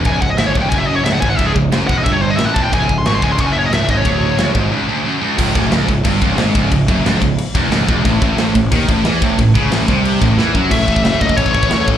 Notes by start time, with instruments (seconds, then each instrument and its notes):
0.05 picked electric bass C#1, distorted electric guitar C#2, lead electric guitar G#5, kick, ride bell
0.22 picked electric bass C#1, distorted electric guitar C#2, lead electric guitar F#5, kick
0.30 lead electric guitar D#5
0.38 picked electric bass G#1, distorted electric guitar G#2, lead electric guitar E5, snare, ride bell
0.46 lead electric guitar C#5
0.55 picked electric bass C#1, distorted electric guitar C#2, kick
0.62 lead electric guitar G5
0.70 picked electric bass F#1, distorted electric guitar F#2, lead electric guitar G#5, kick, ride bell
0.78 lead electric guitar E5
0.87 lead electric guitar D#5
0.96 lead electric guitar C#5
1.04 picked electric bass C#1, distorted electric guitar C#2, lead electric guitar E5, snare, ride bell
1.12 lead electric guitar F#5
1.21 picked electric bass G#1, distorted electric guitar G#2, lead electric guitar G#5, kick
1.30 lead electric guitar F#5
1.37 picked electric bass C#1, distorted electric guitar C#2, lead electric guitar E5, kick, ride bell
1.46 lead electric guitar G#4
1.55 picked electric bass C#1, distorted electric guitar C#2, kick
1.70 picked electric bass F#1, distorted electric guitar F#2, snare, ride bell
1.87 picked electric bass E1, distorted electric guitar E2, lead electric guitar F#5, kick
1.97 lead electric guitar D#5
2.04 picked electric bass G1, distorted electric guitar G2, lead electric guitar E5, kick, ride bell
2.12 lead electric guitar C#5
2.22 lead electric guitar C5
2.30 lead electric guitar D#5
2.36 picked electric bass A1, distorted electric guitar A2, lead electric guitar E5, snare, ride bell
2.45 lead electric guitar F#5
2.54 picked electric bass E1, distorted electric guitar E2, lead electric guitar A5, kick
2.62 lead electric guitar G5
2.72 picked electric bass C#1, distorted electric guitar C#2, lead electric guitar G#5, kick, ride bell
2.89 picked electric bass C#1, distorted electric guitar C#2, kick
2.98 lead electric guitar C6
3.05 picked electric bass G#1, distorted electric guitar G#2, lead electric guitar C#6, snare, ride bell
3.15 lead electric guitar C6
3.22 picked electric bass C#1, distorted electric guitar C#2, lead electric guitar G#5, kick
3.32 lead electric guitar C6
3.38 picked electric bass F#1, distorted electric guitar F#2, lead electric guitar C#6, kick, ride bell
3.47 lead electric guitar G#5
3.52 lead electric guitar E5
3.59 lead electric guitar C#5
3.66 lead electric guitar D#5
3.71 picked electric bass C#1, distorted electric guitar C#2, lead electric guitar E5, snare, ride bell
3.88 picked electric bass G#1, distorted electric guitar G#2, lead electric guitar D#5, kick
3.97 lead electric guitar C#5
4.05 picked electric bass D1, distorted electric guitar D2, kick, ride bell
4.37 picked electric bass C#1, distorted electric guitar C#2, snare, ride bell
4.55 picked electric bass G#1, distorted electric guitar G#2, kick
4.72 distorted electric guitar C#2
4.89 distorted electric guitar D2
5.05 distorted electric guitar F#2
5.21 distorted electric guitar C#2
5.38 picked electric bass C#1, distorted electric guitar C#2, kick, crash
5.54 picked electric bass D1, distorted electric guitar D2, kick, crash
5.71 picked electric bass C#1, distorted electric guitar C#2, snare, crash
5.88 picked electric bass C#1, distorted electric guitar C#2, kick, crash
6.05 picked electric bass G1, distorted electric guitar G2, kick, crash
6.22 picked electric bass C#1, distorted electric guitar C#2, kick, crash
6.36 picked electric bass G#1, distorted electric guitar G#2, snare, crash
6.55 picked electric bass C#1, distorted electric guitar C#2, kick, crash
6.71 picked electric bass C#1, distorted electric guitar C#2, kick, crash
6.88 picked electric bass F#1, distorted electric guitar F#2, kick, crash
7.04 picked electric bass C#1, distorted electric guitar C#2, snare, crash
7.22 picked electric bass C#1, distorted electric guitar C#2, kick, crash
7.38 crash
7.55 picked electric bass E1, distorted electric guitar E2, kick, crash
7.70 picked electric bass C#1, distorted electric guitar C#2, snare, crash
7.88 picked electric bass E1, distorted electric guitar E2, kick, crash
8.05 picked electric bass A1, distorted electric guitar A2, kick, crash
8.21 picked electric bass A1, distorted electric guitar A2, kick, crash
8.37 picked electric bass A1, distorted electric guitar A2, snare, crash
8.55 picked electric bass A1, distorted electric guitar A2, kick, crash
8.72 picked electric bass D#2, distorted electric guitar D#3, kick, crash
8.88 picked electric bass A1, distorted electric guitar A2, kick, crash
9.04 picked electric bass E2, distorted electric guitar E3, snare, crash
9.22 picked electric bass A1, distorted electric guitar A2, kick, crash
9.39 picked electric bass A1, distorted electric guitar A2, kick, crash
9.55 picked electric bass C#2, distorted electric guitar C#3, kick, crash
9.70 picked electric bass A1, distorted electric guitar A2, snare, crash
9.88 picked electric bass C2, distorted electric guitar C3, kick, crash
10.05 crash
10.21 picked electric bass A1, distorted electric guitar A2, kick, crash
10.37 picked electric bass E2, distorted electric guitar E3, snare
10.54 picked electric bass F#2, distorted electric guitar F#3, kick
10.70 picked electric bass A1, distorted electric guitar A2 E3 A3, overdriven electric guitar C#4 E4 A4, lead electric guitar E5, kick, crash
10.87 picked electric bass A1, distorted electric guitar A2 E3 A3, kick
10.96 kick
11.03 picked electric bass F#1, distorted electric guitar A2 E3 A3, snare, crash
11.20 distorted electric guitar A2 E3 A3, lead electric guitar D#5, kick
11.29 kick
11.37 picked electric bass A1, distorted electric guitar A2 E3 A3, overdriven electric guitar C#4 E4 A4, lead electric guitar C#5, kick, crash
11.46 kick
11.54 picked electric bass A1, distorted electric guitar A2 E3 A3, lead electric guitar C#5, kick
11.63 kick
11.70 picked electric bass E2, distorted electric guitar A2 E3 A3, snare, crash
11.87 picked electric bass A1, distorted electric guitar A2 E3 A3, kick